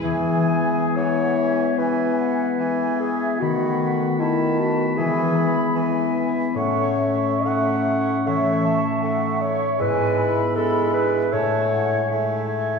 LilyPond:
<<
  \new Staff \with { instrumentName = "Oboe" } { \time 4/4 \key e \major \tempo 4 = 76 gis''8 gis''8 gis''8 gis''8 gis''8 gis''8 gis''8 gis''8 | b''8 b''8 b''8 b''8 b''8 b''8 b''8 b''8 | cis'''8 cis'''8 cis'''8 cis'''8 cis'''8 cis'''8 cis'''8 cis'''8 | e''8 e''8 e''8 e''8 gis''8 gis''8 gis''8 gis''8 | }
  \new Staff \with { instrumentName = "Flute section" } { \time 4/4 \key e \major gis''4 fis''8 e''8 gis''8 fis''8 gis''8 e''8 | fis''4 a''4 gis''8 b''8 gis''4 | fis''8 e''4. cis''8 a''8 fis''8 e''8 | gis''8 b''4. a''8 fis''8 e''4 | }
  \new Staff \with { instrumentName = "Clarinet" } { \time 4/4 \key e \major gis'4 cis''4 b'4. gis'8 | fis'4 e'8 fis'8 gis'4. r8 | cis''4 fis''4 e''4. cis''8 | b'4 a'8 b'8 cis''4. r8 | }
  \new Staff \with { instrumentName = "Harp" } { \time 4/4 \key e \major \tuplet 3/2 { <e gis b'>8 gis'8 b'8 a'8 b'8 gis'8 gis8 gis'8 b'8 a'8 b'8 gis'8 } | \tuplet 3/2 { dis8 b'8 fis'8 e'8 fis'8 b'8 e8 gis'8 b'8 a'8 b'8 gis'8 } | \tuplet 3/2 { a,8 cis''8 e'8 dis'8 e'8 cis''8 e8 cis''8 e'8 dis'8 e'8 cis''8 } | \tuplet 3/2 { gis,8 d''8 e'8 d'8 e'8 d''8 a,8 cis''8 e'8 dis'8 e'8 cis''8 } | }
  \new Staff \with { instrumentName = "French horn section" } { \time 4/4 \key e \major << { b1~ | b2 b2 | cis'1 | e'1 | } \\ { gis1 | a2 gis2 | a1 | b2 gis2 | } >> }
  \new Staff \with { instrumentName = "Bassoon" } { \clef bass \time 4/4 \key e \major e4 e4 e4 e4 | dis4 dis4 e4 e4 | a4 a4 a4 a4 | gis4 gis4 a4 a4 | }
>>